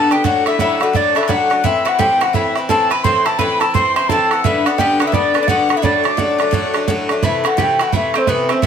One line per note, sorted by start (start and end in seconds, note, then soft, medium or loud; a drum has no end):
0.00 0.11 G2 medium
0.00 0.12 D3 medium
0.00 0.11 B3 medium
0.00 0.11 A4 medium
0.00 0.13 A5 medium
0.00 0.14 A5 loud
0.11 0.25 D3 soft
0.11 0.25 B3 soft
0.11 0.24 D4 medium
0.11 0.24 G4 medium
0.11 0.26 G5 medium
0.11 0.25 G5 medium
0.11 bodhran medium
0.24 0.46 A2 medium
0.24 0.47 F#3 medium
0.24 0.46 A3 medium
0.24 0.45 D4 medium
0.24 0.45 F#4 medium
0.24 0.46 F#5 medium
0.24 0.48 F#5 medium
0.24 bodhran medium
0.46 0.59 F#3 soft
0.46 0.59 A3 soft
0.46 0.59 D4 medium
0.46 0.59 E4 medium
0.46 0.59 E5 medium
0.46 0.58 E5 medium
0.46 bodhran medium
0.59 0.81 A2 medium
0.59 0.82 F#3 medium
0.59 0.81 A3 medium
0.59 0.79 D4 medium
0.59 0.81 E4 medium
0.59 0.96 E5 medium
0.59 0.83 E5 medium
0.59 bodhran medium
0.80 0.93 F#3 soft
0.80 0.94 A3 soft
0.80 0.94 D4 soft
0.80 0.94 F#4 medium
0.80 0.98 F#5 medium
0.80 bodhran medium
0.93 1.16 A2 medium
0.93 1.16 F#3 medium
0.93 1.16 A3 medium
0.93 1.15 D4 medium
0.93 1.14 D4 medium
0.93 1.31 D5 medium
0.93 1.18 D5 medium
0.93 bodhran medium
1.15 1.27 F#3 soft
1.15 1.28 A3 medium
1.15 1.29 D4 medium
1.15 1.29 E4 medium
1.15 1.32 E5 medium
1.15 bodhran medium
1.23 bodhran medium
1.28 1.50 A2 medium
1.28 1.51 F#3 medium
1.28 1.50 A3 medium
1.28 1.49 D4 medium
1.28 1.63 F#4 medium
1.28 1.66 F#5 medium
1.28 1.67 F#5 medium
1.28 bodhran medium
1.50 1.64 F#3 soft
1.50 1.65 A3 soft
1.50 1.64 D4 soft
1.50 bodhran medium
1.64 1.86 A2 medium
1.64 1.86 E3 medium
1.64 1.85 C4 medium
1.64 1.84 E4 medium
1.64 1.87 E5 medium
1.64 1.90 E5 medium
1.64 bodhran medium
1.85 1.98 E3 soft
1.85 1.99 C4 soft
1.85 1.99 E4 medium
1.85 1.98 F#4 medium
1.85 2.00 F#5 medium
1.85 2.01 F#5 medium
1.85 bodhran medium
1.99 2.21 A2 medium
1.99 2.21 E3 medium
1.99 2.21 C4 medium
1.99 2.19 E4 medium
1.99 2.19 G4 medium
1.99 2.24 G5 loud
1.99 2.22 G5 medium
1.99 bodhran medium
2.21 2.33 E3 soft
2.21 2.34 C4 soft
2.21 2.34 E4 soft
2.21 2.34 F#4 medium
2.21 2.33 F#5 medium
2.21 2.36 F#5 medium
2.21 bodhran medium
2.33 2.56 A2 medium
2.33 2.56 E3 medium
2.33 2.56 C4 medium
2.33 2.55 E4 medium
2.33 2.54 E4 medium
2.33 2.55 E5 medium
2.33 2.56 E5 medium
2.33 bodhran medium
2.55 2.69 E3 soft
2.55 2.69 C4 soft
2.55 2.69 E4 medium
2.55 bodhran medium
2.69 2.91 A2 medium
2.69 2.91 E3 medium
2.69 2.91 C4 medium
2.69 2.89 E4 medium
2.69 2.90 A4 medium
2.69 2.92 A5 medium
2.69 2.90 A5 loud
2.69 bodhran medium
2.90 3.04 E3 soft
2.90 3.05 C4 soft
2.90 3.04 E4 medium
2.90 3.04 B4 medium
2.90 3.05 B5 loud
2.90 3.04 B5 medium
2.90 bodhran medium
3.04 3.26 A2 medium
3.04 3.26 E3 medium
3.04 3.26 C4 medium
3.04 3.24 E4 medium
3.04 3.24 C5 medium
3.04 3.27 C6 loud
3.04 3.26 C6 medium
3.04 bodhran medium
3.25 3.38 E3 soft
3.25 3.39 C4 soft
3.25 3.39 E4 medium
3.25 3.38 A4 medium
3.25 3.39 A5 medium
3.25 3.40 A5 loud
3.25 bodhran medium
3.38 3.61 A2 medium
3.38 3.61 E3 medium
3.38 3.61 C4 medium
3.38 3.59 E4 medium
3.38 3.59 B4 medium
3.38 3.61 B5 loud
3.38 3.59 B5 medium
3.38 bodhran medium
3.60 3.74 E3 soft
3.60 3.74 C4 soft
3.60 3.73 E4 soft
3.60 3.74 A4 medium
3.60 3.76 A5 medium
3.60 3.74 A5 medium
3.60 bodhran medium
3.74 3.96 A2 medium
3.74 3.96 E3 medium
3.74 3.97 C4 medium
3.74 3.95 E4 medium
3.74 3.94 C5 medium
3.74 3.94 C6 loud
3.74 3.95 C6 medium
3.74 bodhran medium
3.95 4.10 C4 soft
3.95 4.09 E4 medium
3.95 4.08 C5 medium
3.95 4.10 C6 loud
3.95 4.09 C6 medium
3.95 bodhran medium
3.99 4.10 E3 soft
4.09 4.31 A2 medium
4.09 4.32 E3 medium
4.09 4.32 C4 medium
4.09 4.30 E4 medium
4.09 4.42 A4 medium
4.09 4.43 A5 loud
4.09 4.29 A5 medium
4.09 bodhran medium
4.31 4.45 E3 soft
4.31 4.45 C4 soft
4.31 4.44 E4 medium
4.31 4.45 F#5 medium
4.31 bodhran medium
4.44 4.66 G2 medium
4.44 4.66 D3 medium
4.44 4.66 B3 medium
4.44 4.65 D4 medium
4.44 4.65 E4 medium
4.44 4.66 E5 medium
4.44 4.67 E5 medium
4.44 bodhran medium
4.65 4.78 D3 soft
4.65 4.79 B3 soft
4.65 4.79 D4 medium
4.65 4.78 F#4 medium
4.65 4.79 F#5 medium
4.65 4.80 F#5 medium
4.65 bodhran medium
4.78 5.00 G2 medium
4.78 5.01 D3 medium
4.78 5.00 B3 medium
4.78 4.98 D4 medium
4.78 5.00 G4 medium
4.78 5.02 G5 loud
4.78 5.01 G5 medium
4.78 bodhran medium
5.00 5.12 D3 soft
5.00 5.13 B3 medium
5.00 5.13 D4 medium
5.00 5.07 F#4 medium
5.00 5.07 F#5 medium
5.00 5.06 F#5 medium
5.00 bodhran medium
5.06 5.13 E4 medium
5.06 5.15 E5 medium
5.06 5.14 E5 medium
5.12 5.35 G2 medium
5.12 5.35 D3 medium
5.12 5.35 B3 medium
5.12 5.40 D4 medium
5.12 5.33 D4 medium
5.12 5.39 D5 medium
5.12 5.41 D5 medium
5.12 bodhran medium
5.34 5.48 D3 soft
5.34 5.49 B3 soft
5.34 5.48 D4 medium
5.34 bodhran medium
5.40 5.48 D4 medium
5.40 5.48 D5 medium
5.40 5.49 D5 medium
5.47 5.70 G2 medium
5.47 5.70 D3 medium
5.47 5.70 B3 medium
5.47 5.68 D4 medium
5.47 5.75 F#4 medium
5.47 5.77 F#5 medium
5.47 5.78 F#5 loud
5.47 bodhran medium
5.69 5.83 D3 soft
5.69 5.83 B3 soft
5.69 5.83 D4 soft
5.69 bodhran medium
5.77 5.83 E4 medium
5.77 5.84 E5 medium
5.82 6.04 A2 medium
5.82 6.05 F#3 medium
5.82 6.04 A3 medium
5.82 6.85 D4 medium
5.82 6.02 D4 medium
5.82 6.88 D5 medium
5.82 6.84 D5 medium
5.82 bodhran medium
6.04 6.17 F#3 soft
6.04 6.18 A3 soft
6.04 6.17 D4 medium
6.04 bodhran medium
6.17 6.39 A2 medium
6.17 6.40 F#3 medium
6.17 6.39 A3 medium
6.17 6.37 D4 medium
6.17 bodhran medium
6.39 6.51 F#3 soft
6.39 6.52 A3 medium
6.39 6.52 D4 medium
6.39 bodhran medium
6.51 6.74 A2 medium
6.51 6.75 F#3 medium
6.51 6.74 A3 medium
6.51 6.72 D4 medium
6.51 bodhran medium
6.74 6.87 F#3 soft
6.74 6.88 A3 medium
6.74 6.87 D4 medium
6.74 bodhran medium
6.88 7.10 A2 medium
6.88 7.10 F#3 medium
6.88 7.10 A3 medium
6.88 7.08 D4 loud
6.88 bodhran medium
7.09 7.23 F#3 soft
7.09 7.23 A3 medium
7.09 7.22 D4 medium
7.09 bodhran medium
7.22 7.44 C3 medium
7.22 7.45 E3 medium
7.22 7.44 A3 medium
7.22 7.45 E4 medium
7.22 7.42 E4 medium
7.22 7.49 E5 medium
7.22 bodhran medium
7.44 7.57 E3 soft
7.44 7.58 A3 soft
7.44 7.57 E4 medium
7.44 7.57 F#4 medium
7.44 7.63 F#5 medium
7.44 bodhran medium
7.57 7.79 C3 medium
7.57 7.80 E3 medium
7.57 7.80 A3 medium
7.57 7.78 E4 medium
7.57 7.78 G4 medium
7.57 bodhran medium
7.62 7.84 G5 medium
7.79 7.92 E3 soft
7.79 7.93 A3 medium
7.79 7.92 E4 medium
7.79 7.93 F#4 medium
7.79 7.94 F#5 medium
7.79 bodhran medium
7.92 8.14 C3 medium
7.92 8.15 E3 medium
7.92 8.14 A3 medium
7.92 8.13 E4 medium
7.92 8.20 E5 medium
7.92 bodhran medium
8.14 8.27 E3 soft
8.14 8.28 A3 medium
8.14 8.27 C4 medium
8.14 8.27 E4 soft
8.14 bodhran medium
8.18 8.32 C5 medium
8.27 8.49 C3 medium
8.27 8.50 E3 medium
8.27 8.50 A3 medium
8.27 8.48 B3 medium
8.27 8.48 E4 medium
8.27 8.54 B4 medium
8.27 bodhran medium
8.49 8.62 E3 soft
8.49 8.62 A3 soft
8.49 8.63 C4 medium
8.49 8.62 E4 medium
8.49 8.64 C5 medium
8.49 bodhran medium
8.62 8.67 C3 medium
8.62 8.67 E3 medium
8.62 8.67 A3 medium
8.62 8.67 E4 medium
8.62 bodhran medium